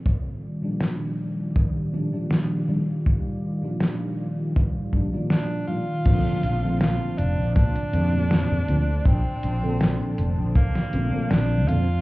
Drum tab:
CC |----------------|----------------|x---------------|----------------|
HH |----------------|----------------|x-x-x-x-xxx-x-x-|x-x-x-x-xxx-x-x-|
SD |----o-------o---|----o-------o---|----o-------o---|----o----o--o---|
BD |o-------o-------|o-------o-o-----|o-------o-------|o-------o-------|